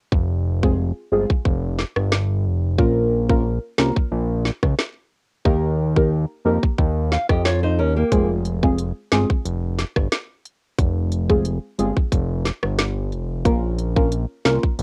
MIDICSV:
0, 0, Header, 1, 5, 480
1, 0, Start_track
1, 0, Key_signature, -4, "minor"
1, 0, Tempo, 666667
1, 86, Time_signature, 4, 2, 24, 8
1, 10676, End_track
2, 0, Start_track
2, 0, Title_t, "Nylon-string guitar"
2, 0, Program_c, 0, 24
2, 5127, Note_on_c, 0, 77, 76
2, 5247, Note_off_c, 0, 77, 0
2, 5254, Note_on_c, 0, 75, 79
2, 5258, Note_on_c, 0, 67, 66
2, 5361, Note_off_c, 0, 75, 0
2, 5363, Note_off_c, 0, 67, 0
2, 5366, Note_on_c, 0, 73, 84
2, 5371, Note_on_c, 0, 65, 72
2, 5487, Note_off_c, 0, 73, 0
2, 5489, Note_off_c, 0, 65, 0
2, 5494, Note_on_c, 0, 72, 85
2, 5498, Note_on_c, 0, 63, 72
2, 5601, Note_off_c, 0, 72, 0
2, 5603, Note_off_c, 0, 63, 0
2, 5606, Note_on_c, 0, 70, 75
2, 5611, Note_on_c, 0, 61, 69
2, 5727, Note_off_c, 0, 70, 0
2, 5729, Note_off_c, 0, 61, 0
2, 5734, Note_on_c, 0, 67, 76
2, 5738, Note_on_c, 0, 58, 64
2, 5962, Note_off_c, 0, 67, 0
2, 5964, Note_off_c, 0, 58, 0
2, 10676, End_track
3, 0, Start_track
3, 0, Title_t, "Synth stab"
3, 0, Program_c, 1, 62
3, 452, Note_on_c, 1, 56, 80
3, 453, Note_on_c, 1, 60, 76
3, 454, Note_on_c, 1, 65, 74
3, 456, Note_on_c, 1, 68, 88
3, 550, Note_off_c, 1, 56, 0
3, 551, Note_off_c, 1, 60, 0
3, 552, Note_off_c, 1, 65, 0
3, 552, Note_off_c, 1, 68, 0
3, 803, Note_on_c, 1, 56, 75
3, 804, Note_on_c, 1, 60, 71
3, 806, Note_on_c, 1, 65, 70
3, 807, Note_on_c, 1, 68, 82
3, 915, Note_off_c, 1, 56, 0
3, 916, Note_off_c, 1, 60, 0
3, 916, Note_off_c, 1, 65, 0
3, 917, Note_off_c, 1, 68, 0
3, 2003, Note_on_c, 1, 58, 93
3, 2004, Note_on_c, 1, 61, 87
3, 2006, Note_on_c, 1, 65, 88
3, 2008, Note_on_c, 1, 70, 104
3, 2341, Note_off_c, 1, 58, 0
3, 2342, Note_off_c, 1, 61, 0
3, 2343, Note_off_c, 1, 65, 0
3, 2343, Note_off_c, 1, 70, 0
3, 2372, Note_on_c, 1, 58, 83
3, 2372, Note_on_c, 1, 61, 70
3, 2374, Note_on_c, 1, 65, 74
3, 2375, Note_on_c, 1, 70, 86
3, 2470, Note_off_c, 1, 58, 0
3, 2471, Note_off_c, 1, 61, 0
3, 2471, Note_off_c, 1, 65, 0
3, 2472, Note_off_c, 1, 70, 0
3, 2724, Note_on_c, 1, 58, 76
3, 2725, Note_on_c, 1, 61, 68
3, 2727, Note_on_c, 1, 65, 70
3, 2728, Note_on_c, 1, 70, 86
3, 2836, Note_off_c, 1, 58, 0
3, 2836, Note_off_c, 1, 61, 0
3, 2837, Note_off_c, 1, 65, 0
3, 2838, Note_off_c, 1, 70, 0
3, 3924, Note_on_c, 1, 58, 95
3, 3926, Note_on_c, 1, 63, 88
3, 3927, Note_on_c, 1, 67, 85
3, 3928, Note_on_c, 1, 70, 109
3, 4262, Note_off_c, 1, 58, 0
3, 4263, Note_off_c, 1, 63, 0
3, 4263, Note_off_c, 1, 67, 0
3, 4264, Note_off_c, 1, 70, 0
3, 4291, Note_on_c, 1, 58, 78
3, 4293, Note_on_c, 1, 63, 73
3, 4294, Note_on_c, 1, 67, 74
3, 4296, Note_on_c, 1, 70, 89
3, 4390, Note_off_c, 1, 58, 0
3, 4391, Note_off_c, 1, 63, 0
3, 4392, Note_off_c, 1, 67, 0
3, 4392, Note_off_c, 1, 70, 0
3, 4644, Note_on_c, 1, 58, 80
3, 4645, Note_on_c, 1, 63, 68
3, 4647, Note_on_c, 1, 67, 70
3, 4649, Note_on_c, 1, 70, 83
3, 4755, Note_off_c, 1, 58, 0
3, 4756, Note_off_c, 1, 63, 0
3, 4757, Note_off_c, 1, 67, 0
3, 4758, Note_off_c, 1, 70, 0
3, 5843, Note_on_c, 1, 56, 97
3, 5845, Note_on_c, 1, 60, 85
3, 5846, Note_on_c, 1, 65, 88
3, 5848, Note_on_c, 1, 68, 100
3, 6181, Note_off_c, 1, 56, 0
3, 6182, Note_off_c, 1, 60, 0
3, 6183, Note_off_c, 1, 65, 0
3, 6184, Note_off_c, 1, 68, 0
3, 6212, Note_on_c, 1, 56, 78
3, 6213, Note_on_c, 1, 60, 72
3, 6215, Note_on_c, 1, 65, 74
3, 6217, Note_on_c, 1, 68, 92
3, 6311, Note_off_c, 1, 56, 0
3, 6311, Note_off_c, 1, 60, 0
3, 6312, Note_off_c, 1, 65, 0
3, 6313, Note_off_c, 1, 68, 0
3, 6564, Note_on_c, 1, 56, 75
3, 6566, Note_on_c, 1, 60, 73
3, 6567, Note_on_c, 1, 65, 66
3, 6569, Note_on_c, 1, 68, 87
3, 6676, Note_off_c, 1, 56, 0
3, 6677, Note_off_c, 1, 60, 0
3, 6677, Note_off_c, 1, 65, 0
3, 6678, Note_off_c, 1, 68, 0
3, 8131, Note_on_c, 1, 56, 78
3, 8132, Note_on_c, 1, 60, 73
3, 8134, Note_on_c, 1, 65, 72
3, 8135, Note_on_c, 1, 68, 88
3, 8230, Note_off_c, 1, 56, 0
3, 8231, Note_off_c, 1, 60, 0
3, 8231, Note_off_c, 1, 65, 0
3, 8232, Note_off_c, 1, 68, 0
3, 8484, Note_on_c, 1, 56, 77
3, 8485, Note_on_c, 1, 60, 68
3, 8486, Note_on_c, 1, 65, 71
3, 8488, Note_on_c, 1, 68, 81
3, 8595, Note_off_c, 1, 56, 0
3, 8596, Note_off_c, 1, 60, 0
3, 8597, Note_off_c, 1, 65, 0
3, 8597, Note_off_c, 1, 68, 0
3, 9683, Note_on_c, 1, 58, 94
3, 9685, Note_on_c, 1, 61, 90
3, 9686, Note_on_c, 1, 65, 91
3, 9688, Note_on_c, 1, 70, 103
3, 10021, Note_off_c, 1, 58, 0
3, 10022, Note_off_c, 1, 61, 0
3, 10023, Note_off_c, 1, 65, 0
3, 10024, Note_off_c, 1, 70, 0
3, 10051, Note_on_c, 1, 58, 80
3, 10052, Note_on_c, 1, 61, 76
3, 10054, Note_on_c, 1, 65, 74
3, 10055, Note_on_c, 1, 70, 86
3, 10150, Note_off_c, 1, 58, 0
3, 10151, Note_off_c, 1, 61, 0
3, 10151, Note_off_c, 1, 65, 0
3, 10152, Note_off_c, 1, 70, 0
3, 10403, Note_on_c, 1, 58, 75
3, 10404, Note_on_c, 1, 61, 71
3, 10406, Note_on_c, 1, 65, 70
3, 10408, Note_on_c, 1, 70, 82
3, 10515, Note_off_c, 1, 58, 0
3, 10515, Note_off_c, 1, 61, 0
3, 10516, Note_off_c, 1, 65, 0
3, 10517, Note_off_c, 1, 70, 0
3, 10676, End_track
4, 0, Start_track
4, 0, Title_t, "Analog synth bass"
4, 0, Program_c, 2, 38
4, 86, Note_on_c, 2, 29, 96
4, 664, Note_off_c, 2, 29, 0
4, 806, Note_on_c, 2, 31, 105
4, 903, Note_off_c, 2, 31, 0
4, 1045, Note_on_c, 2, 29, 104
4, 1325, Note_off_c, 2, 29, 0
4, 1412, Note_on_c, 2, 31, 94
4, 1765, Note_on_c, 2, 29, 90
4, 1776, Note_off_c, 2, 31, 0
4, 2006, Note_on_c, 2, 34, 97
4, 2017, Note_off_c, 2, 29, 0
4, 2584, Note_off_c, 2, 34, 0
4, 2725, Note_on_c, 2, 36, 93
4, 2823, Note_off_c, 2, 36, 0
4, 2965, Note_on_c, 2, 34, 112
4, 3245, Note_off_c, 2, 34, 0
4, 3332, Note_on_c, 2, 37, 90
4, 3418, Note_off_c, 2, 37, 0
4, 3926, Note_on_c, 2, 39, 110
4, 4504, Note_off_c, 2, 39, 0
4, 4646, Note_on_c, 2, 41, 87
4, 4743, Note_off_c, 2, 41, 0
4, 4885, Note_on_c, 2, 39, 103
4, 5165, Note_off_c, 2, 39, 0
4, 5252, Note_on_c, 2, 41, 86
4, 5607, Note_on_c, 2, 39, 93
4, 5617, Note_off_c, 2, 41, 0
4, 5789, Note_off_c, 2, 39, 0
4, 5846, Note_on_c, 2, 29, 105
4, 6424, Note_off_c, 2, 29, 0
4, 6566, Note_on_c, 2, 31, 91
4, 6663, Note_off_c, 2, 31, 0
4, 6807, Note_on_c, 2, 29, 104
4, 7087, Note_off_c, 2, 29, 0
4, 7172, Note_on_c, 2, 31, 85
4, 7259, Note_off_c, 2, 31, 0
4, 7766, Note_on_c, 2, 29, 92
4, 8345, Note_off_c, 2, 29, 0
4, 8486, Note_on_c, 2, 31, 98
4, 8583, Note_off_c, 2, 31, 0
4, 8725, Note_on_c, 2, 29, 109
4, 9005, Note_off_c, 2, 29, 0
4, 9094, Note_on_c, 2, 31, 93
4, 9446, Note_on_c, 2, 29, 86
4, 9457, Note_off_c, 2, 31, 0
4, 9686, Note_on_c, 2, 34, 104
4, 9697, Note_off_c, 2, 29, 0
4, 10264, Note_off_c, 2, 34, 0
4, 10407, Note_on_c, 2, 36, 95
4, 10503, Note_off_c, 2, 36, 0
4, 10646, Note_on_c, 2, 34, 113
4, 10676, Note_off_c, 2, 34, 0
4, 10676, End_track
5, 0, Start_track
5, 0, Title_t, "Drums"
5, 86, Note_on_c, 9, 36, 121
5, 158, Note_off_c, 9, 36, 0
5, 454, Note_on_c, 9, 36, 106
5, 526, Note_off_c, 9, 36, 0
5, 934, Note_on_c, 9, 36, 106
5, 1006, Note_off_c, 9, 36, 0
5, 1045, Note_on_c, 9, 36, 95
5, 1117, Note_off_c, 9, 36, 0
5, 1285, Note_on_c, 9, 38, 62
5, 1357, Note_off_c, 9, 38, 0
5, 1412, Note_on_c, 9, 37, 96
5, 1484, Note_off_c, 9, 37, 0
5, 1526, Note_on_c, 9, 38, 113
5, 1598, Note_off_c, 9, 38, 0
5, 2006, Note_on_c, 9, 36, 124
5, 2078, Note_off_c, 9, 36, 0
5, 2373, Note_on_c, 9, 36, 104
5, 2445, Note_off_c, 9, 36, 0
5, 2723, Note_on_c, 9, 38, 116
5, 2795, Note_off_c, 9, 38, 0
5, 2854, Note_on_c, 9, 36, 105
5, 2926, Note_off_c, 9, 36, 0
5, 3206, Note_on_c, 9, 38, 61
5, 3278, Note_off_c, 9, 38, 0
5, 3332, Note_on_c, 9, 36, 93
5, 3332, Note_on_c, 9, 37, 94
5, 3404, Note_off_c, 9, 36, 0
5, 3404, Note_off_c, 9, 37, 0
5, 3446, Note_on_c, 9, 38, 119
5, 3518, Note_off_c, 9, 38, 0
5, 3926, Note_on_c, 9, 36, 116
5, 3998, Note_off_c, 9, 36, 0
5, 4294, Note_on_c, 9, 36, 102
5, 4366, Note_off_c, 9, 36, 0
5, 4775, Note_on_c, 9, 36, 102
5, 4847, Note_off_c, 9, 36, 0
5, 4885, Note_on_c, 9, 36, 93
5, 4957, Note_off_c, 9, 36, 0
5, 5126, Note_on_c, 9, 38, 64
5, 5198, Note_off_c, 9, 38, 0
5, 5252, Note_on_c, 9, 36, 96
5, 5252, Note_on_c, 9, 37, 98
5, 5324, Note_off_c, 9, 36, 0
5, 5324, Note_off_c, 9, 37, 0
5, 5366, Note_on_c, 9, 38, 118
5, 5438, Note_off_c, 9, 38, 0
5, 5846, Note_on_c, 9, 36, 119
5, 5846, Note_on_c, 9, 42, 76
5, 5918, Note_off_c, 9, 36, 0
5, 5918, Note_off_c, 9, 42, 0
5, 6086, Note_on_c, 9, 42, 52
5, 6158, Note_off_c, 9, 42, 0
5, 6214, Note_on_c, 9, 36, 103
5, 6286, Note_off_c, 9, 36, 0
5, 6325, Note_on_c, 9, 42, 70
5, 6397, Note_off_c, 9, 42, 0
5, 6564, Note_on_c, 9, 38, 111
5, 6568, Note_on_c, 9, 42, 61
5, 6636, Note_off_c, 9, 38, 0
5, 6640, Note_off_c, 9, 42, 0
5, 6695, Note_on_c, 9, 36, 99
5, 6767, Note_off_c, 9, 36, 0
5, 6808, Note_on_c, 9, 42, 78
5, 6880, Note_off_c, 9, 42, 0
5, 7046, Note_on_c, 9, 38, 63
5, 7047, Note_on_c, 9, 42, 61
5, 7118, Note_off_c, 9, 38, 0
5, 7119, Note_off_c, 9, 42, 0
5, 7172, Note_on_c, 9, 36, 88
5, 7173, Note_on_c, 9, 37, 101
5, 7244, Note_off_c, 9, 36, 0
5, 7245, Note_off_c, 9, 37, 0
5, 7287, Note_on_c, 9, 38, 114
5, 7287, Note_on_c, 9, 42, 72
5, 7359, Note_off_c, 9, 38, 0
5, 7359, Note_off_c, 9, 42, 0
5, 7528, Note_on_c, 9, 42, 48
5, 7600, Note_off_c, 9, 42, 0
5, 7766, Note_on_c, 9, 36, 124
5, 7766, Note_on_c, 9, 42, 79
5, 7838, Note_off_c, 9, 36, 0
5, 7838, Note_off_c, 9, 42, 0
5, 8006, Note_on_c, 9, 42, 53
5, 8078, Note_off_c, 9, 42, 0
5, 8134, Note_on_c, 9, 36, 99
5, 8206, Note_off_c, 9, 36, 0
5, 8244, Note_on_c, 9, 42, 71
5, 8316, Note_off_c, 9, 42, 0
5, 8488, Note_on_c, 9, 42, 63
5, 8560, Note_off_c, 9, 42, 0
5, 8615, Note_on_c, 9, 36, 102
5, 8687, Note_off_c, 9, 36, 0
5, 8725, Note_on_c, 9, 36, 91
5, 8727, Note_on_c, 9, 42, 76
5, 8797, Note_off_c, 9, 36, 0
5, 8799, Note_off_c, 9, 42, 0
5, 8966, Note_on_c, 9, 38, 66
5, 8967, Note_on_c, 9, 42, 59
5, 9038, Note_off_c, 9, 38, 0
5, 9039, Note_off_c, 9, 42, 0
5, 9092, Note_on_c, 9, 37, 97
5, 9164, Note_off_c, 9, 37, 0
5, 9206, Note_on_c, 9, 38, 120
5, 9206, Note_on_c, 9, 42, 75
5, 9278, Note_off_c, 9, 38, 0
5, 9278, Note_off_c, 9, 42, 0
5, 9448, Note_on_c, 9, 42, 50
5, 9520, Note_off_c, 9, 42, 0
5, 9686, Note_on_c, 9, 36, 119
5, 9686, Note_on_c, 9, 42, 81
5, 9758, Note_off_c, 9, 36, 0
5, 9758, Note_off_c, 9, 42, 0
5, 9925, Note_on_c, 9, 42, 54
5, 9997, Note_off_c, 9, 42, 0
5, 10054, Note_on_c, 9, 36, 106
5, 10126, Note_off_c, 9, 36, 0
5, 10165, Note_on_c, 9, 42, 72
5, 10237, Note_off_c, 9, 42, 0
5, 10404, Note_on_c, 9, 38, 113
5, 10408, Note_on_c, 9, 42, 61
5, 10476, Note_off_c, 9, 38, 0
5, 10480, Note_off_c, 9, 42, 0
5, 10535, Note_on_c, 9, 36, 102
5, 10607, Note_off_c, 9, 36, 0
5, 10648, Note_on_c, 9, 42, 75
5, 10676, Note_off_c, 9, 42, 0
5, 10676, End_track
0, 0, End_of_file